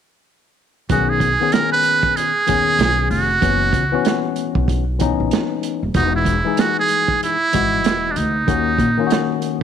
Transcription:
0.89 upright bass B1, tine electric piano D#3 B3 C#4 G#4, muted trumpet F#4, kick, closed hi-hat
1.10 muted trumpet G#4
1.20 kick, closed hi-hat
1.40 tine electric piano D#3 B3 C#4 G#4
1.52 muted trumpet A#4, snare, closed hi-hat
1.72 muted trumpet B4
1.83 closed hi-hat
2.03 kick
2.17 muted trumpet G#4, closed hi-hat
2.47 upright bass D#2, tine electric piano D#3 B3 C#4 G#4, kick, closed hi-hat
2.79 upright bass B1, snare, closed hi-hat
3.10 upright bass F1, muted trumpet F#4, open hi-hat
3.41 upright bass F#1, tine electric piano E3 B3 C#4 F#4, kick, closed hi-hat
3.73 upright bass C#2, kick, closed hi-hat
3.92 tine electric piano E3 B3 C#4 F#4
4.05 snare, closed hi-hat
4.36 closed hi-hat
4.55 upright bass B1, kick
4.68 kick, closed hi-hat
4.99 tine electric piano E3 B3 C#4 D#4, kick, closed hi-hat
5.20 upright bass A#1
5.31 snare, closed hi-hat
5.63 closed hi-hat
5.83 upright bass D#1
5.94 upright bass E1, tine electric piano E3 G#3 D#4 F#4, muted trumpet D#4, kick, closed hi-hat
6.16 muted trumpet E4
6.25 kick, closed hi-hat
6.44 tine electric piano E3 G#3 D#4 G#4
6.57 muted trumpet F#4, snare, closed hi-hat
6.80 muted trumpet G#4
6.88 closed hi-hat
7.08 kick
7.23 muted trumpet E4, closed hi-hat
7.52 upright bass G#1, tine electric piano E3 G#3 F#4 D#5, kick, closed hi-hat
7.84 upright bass E1, snare, closed hi-hat
8.12 muted trumpet D4
8.16 upright bass D2, muted trumpet D#4, closed hi-hat
8.47 upright bass D#2, tine electric piano D#3 A#3 C#4 F#4, kick, closed hi-hat
8.78 upright bass A#2, kick, closed hi-hat
8.97 tine electric piano D#3 A#3 C#4 F4
9.07 tine electric piano F#4, closed hi-hat
9.12 snare
9.42 closed hi-hat

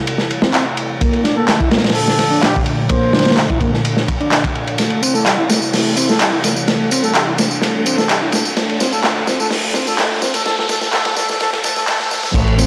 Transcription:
Already playing: analog synth pad C3 E3 G3 A3 E4, riser
0.07 ride
0.18 snare
0.31 ride
0.42 transistor combo organ C4, snare
0.53 transistor combo organ C4, clap, ride
0.77 ride
1.01 analog synth pad A#2 D3 F3 D4, transistor combo organ A#3, kick, ride
1.13 ride
1.24 transistor combo organ D4, snare, ride
1.36 transistor combo organ A#3, muted trumpet A4
1.48 transistor combo organ A3, muted trumpet A4, snare, clap, ride
1.60 transistor combo organ E4, kick
1.71 transistor combo organ A#3, snare, ride
1.78 snare, ride
1.84 snare, ride
1.90 snare, ride
1.95 muted trumpet A4, open hi-hat
2.08 snare
2.19 snare, ride
2.31 transistor combo organ D4
2.42 transistor combo organ D4, muted trumpet G4, snare, clap, ride
2.56 kick
2.66 ride
2.89 transistor combo organ A#3, muted trumpet C5, kick, ride
3.13 transistor combo organ D4, snare, ride
3.19 snare, ride
3.25 transistor combo organ A#3, snare, ride
3.31 snare, ride
3.37 transistor combo organ A3, snare, clap, ride
3.50 transistor combo organ E4, kick
3.61 transistor combo organ A#3, kick, ride
3.74 snare
3.85 ride
3.97 snare
4.08 kick, ride
4.20 transistor combo organ D4, ride
4.31 transistor combo organ D4, snare, clap, ride
4.44 kick, ride
4.55 ride
4.67 ride
4.78 analog synth pad C3 E3 G3 E4, transistor combo organ A3, snare, ride, tambourine
4.90 ride
5.03 transistor combo organ C4, ride, tambourine
5.14 transistor combo organ A3, muted trumpet A4, tambourine
5.26 transistor combo organ G3, muted trumpet A4, clap, ride, tambourine
5.38 transistor combo organ E4
5.49 transistor combo organ A3, snare, ride, tambourine
5.62 tambourine
5.73 transistor combo organ A3, snare, open hi-hat, tambourine
5.97 transistor combo organ C4, ride, tambourine
6.09 transistor combo organ A3, muted trumpet A4, snare, tambourine
6.19 transistor combo organ G3, muted trumpet A4, clap, ride, tambourine
6.33 transistor combo organ E4
6.44 transistor combo organ A3, snare, ride, tambourine
6.56 tambourine
6.68 transistor combo organ A3, analog synth pad D4, snare, ride, tambourine
6.91 transistor combo organ C4, ride, tambourine
7.04 transistor combo organ A3, muted trumpet A4, tambourine
7.15 transistor combo organ G3, muted trumpet A4, clap, ride, tambourine
7.27 transistor combo organ E4
7.38 transistor combo organ A3, snare, ride, tambourine
7.51 tambourine
7.62 transistor combo organ A3, snare, ride, tambourine
7.86 transistor combo organ C4, ride, tambourine
7.98 transistor combo organ A3, muted trumpet A4, snare, tambourine
8.09 transistor combo organ G3, muted trumpet A4, clap, ride, tambourine
8.22 transistor combo organ E4
8.32 transistor combo organ A3, snare, ride, tambourine
8.45 tambourine
8.57 analog synth pad A#2 D3 F3 A3, transistor combo organ A3, snare, ride, tambourine
8.70 ride
8.80 transistor combo organ C4, snare, ride, tambourine
8.93 transistor combo organ A3, muted trumpet A4, tambourine
9.04 transistor combo organ A3, snare, clap, ride, tambourine
9.27 transistor combo organ C4, snare, ride, tambourine
9.40 transistor combo organ A3, muted trumpet A4, tambourine
9.50 transistor combo organ A3, snare, open hi-hat, tambourine
9.74 transistor combo organ C4, snare, ride, tambourine
9.87 transistor combo organ A3, muted trumpet A4, tambourine
9.98 transistor combo organ A3, snare, clap, ride, tambourine
10.22 transistor combo organ C4, snare, tambourine
10.34 transistor combo organ A3, muted trumpet A4, ride, tambourine
10.45 analog synth pad G3, transistor combo organ A3, muted trumpet A4, snare, tambourine
10.58 muted trumpet A4, snare
10.69 transistor combo organ A3, muted trumpet A4, snare, ride, tambourine
10.81 muted trumpet A4, snare, tambourine
10.92 transistor combo organ A3, muted trumpet A4, snare, clap, tambourine
11.05 muted trumpet A4, snare, ride
11.16 transistor combo organ A3, muted trumpet A4, snare, tambourine
11.29 muted trumpet A4, snare, tambourine
11.40 transistor combo organ A3, muted trumpet A4, snare, ride, tambourine, swell
11.53 muted trumpet A4, snare, ride
11.64 transistor combo organ A3, muted trumpet A4, snare, ride, tambourine
11.76 muted trumpet A4, snare, tambourine
11.87 transistor combo organ A3, muted trumpet A4, snare, clap, ride, tambourine
12.00 muted trumpet A4, snare, ride
12.11 transistor combo organ A3, muted trumpet A4, snare, tambourine
12.23 muted trumpet A4, snare, ride, tambourine
12.34 picked electric bass A1, transistor combo organ A3, kick, crash, ride, tambourine
12.48 ride
12.58 transistor combo organ C4, snare, ride, tambourine

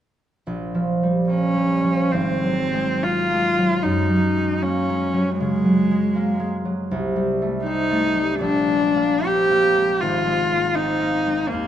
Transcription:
0.47 harp A#1
0.75 harp F3
1.03 harp G3
1.30 harp A#3, cello C#4
1.56 harp G3
1.84 harp F3
2.12 harp G#1, cello C4
2.43 harp F#3
2.74 harp G#3
3.03 harp A#3, cello F4
3.33 harp G#3
3.58 harp F#3
3.83 harp F#2, cello D#4
4.10 harp F#3
4.37 harp G#3
4.62 harp A#3, cello C#4
4.90 harp G#3
5.14 harp F#3
5.38 harp C#3, cello G#3
5.65 harp F#3
5.91 harp G#3
6.15 harp A#3
6.40 harp G#3
6.65 harp F#3
6.91 harp C2
7.16 harp G3
7.42 harp A3
7.65 harp C4, cello D#4
7.91 harp A3
8.16 harp G3
8.41 harp A#1, cello D4
8.68 harp G#3
8.96 harp A#3
9.24 harp C4, cello G4
9.51 harp A#3
9.76 harp G#3
10.00 harp G#1, cello F4
10.26 harp G#3
10.51 harp A#3
10.75 harp C4, cello D#4
11.00 harp A#3
11.26 harp G#3
11.49 harp D#2, cello A#3

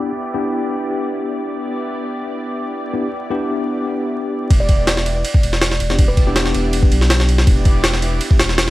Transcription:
Already playing: tine electric piano B3 D4 E4 G4, analog synth pad B3 E4 G4 D5
0.34 tine electric piano B3 D4 E4 G4
1.54 analog synth pad B3 E4 G4 D5
2.94 tine electric piano B3 D4 E4 G4
3.30 tine electric piano B3 D4 E4 G4
4.50 sub bass E1, analog synth pad B3 E4 G4 D5, kick, ride
4.60 kalimba D5
4.69 kick, ride
4.87 kalimba D5, snare, ride
4.97 snare
5.06 analog synth pad B3 E4 G4 D5, ride
5.25 ride
5.34 kick
5.43 sub bass E1, ride
5.53 snare
5.61 snare, ride
5.71 snare
5.80 sub bass E1, ride
5.90 tine electric piano B3 D4 E4 G4, snare
5.99 analog synth pad B3 E4 G4 D5, kick, ride
6.08 kalimba B4
6.17 kick, ride
6.27 tine electric piano B3 D4 E4 G4
6.36 snare, ride
6.46 snare
6.54 sub bass E1, analog synth pad B3 E4 G4 D5, ride
6.73 ride
6.83 kick
6.92 sub bass B1, ride
7.01 snare
7.10 snare, ride
7.20 snare
7.29 ride
7.38 snare
7.47 sub bass E1, analog synth pad B3 E4 G4 D5, kick, ride
7.65 kick, ride
7.84 snare, ride
7.94 snare
8.02 analog synth pad B3 E4 G4 D5, ride
8.21 ride
8.31 kick
8.40 sub bass E1, snare, ride
8.49 snare
8.58 snare, ride

